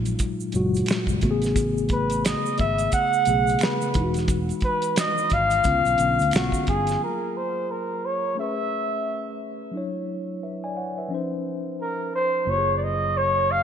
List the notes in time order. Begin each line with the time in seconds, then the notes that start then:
Already playing: A#1 A#2 F#3 G#3 F4
0.06 closed hi-hat, shaker
0.19 kick, closed hi-hat, shaker
0.40 shaker
0.52 F#1 A#2 F#3 G#3, closed hi-hat, shaker
0.56 F#4
0.74 closed hi-hat, shaker
0.86 finger snap, closed hi-hat, shaker
0.91 finger snap, snare
1.07 F#1, kick, shaker
1.21 A1 C#3 A3 B3 F#4, kick, closed hi-hat
1.31 G#4
1.42 snare, closed hi-hat, shaker
1.56 kick, closed hi-hat, shaker
1.78 shaker
1.89 B4, kick, closed hi-hat
2.10 closed hi-hat, shaker
2.25 D#5, finger snap, snare, closed hi-hat, shaker
2.46 shaker
2.58 G#1 E5, kick, closed hi-hat
2.79 closed hi-hat, shaker
2.92 F#5, kick, closed hi-hat, shaker
3.13 shaker
3.25 B1 C#3 A3 B3, closed hi-hat, shaker
3.29 G#4
3.47 closed hi-hat, shaker
3.59 finger snap, closed hi-hat, shaker
3.63 B4, finger snap, snare
3.81 closed hi-hat, shaker
3.94 E1 E3 G#3 D#4 E4, kick, closed hi-hat
4.04 F#4
4.14 snare, closed hi-hat, shaker
4.28 kick, closed hi-hat, shaker
4.49 closed hi-hat, shaker
4.61 B4, kick, closed hi-hat
4.82 closed hi-hat, shaker
4.96 D#5, finger snap, snare, closed hi-hat, shaker
5.18 shaker
5.30 G#1 F5, kick, closed hi-hat
5.51 closed hi-hat, shaker
5.64 C#2 D3 B3 C#4 F4, kick, closed hi-hat, shaker
5.85 B1, closed hi-hat, shaker
5.98 B1 D3 B3 C#4, closed hi-hat, shaker
6.02 F5
6.19 D2, closed hi-hat, shaker
6.31 B1 F#4, finger snap, closed hi-hat, shaker
6.36 finger snap, snare
6.52 kick, closed hi-hat, shaker
6.67 G1 G#4, kick, closed hi-hat
6.87 snare, closed hi-hat, shaker
6.99 F#3 G#3
7.03 F4 G#4 A#4
7.07 A#3
7.37 C5
7.71 A#4
8.06 C#5
8.35 A3 C#4
8.39 G#4 B4 E5
9.71 F#3 D4 E4
9.77 C#5
10.43 B4 E5
10.64 D5 G#5
10.77 C#5 F#5
10.98 B4 E5
11.09 F3 C#4 D#4
11.14 C5
11.82 A#4
12.15 C5
12.45 F#1 F#3 A#3 F4
12.50 G4 C#5
12.58 G#4
12.77 D5
12.84 D#5
13.17 C#5
13.52 F5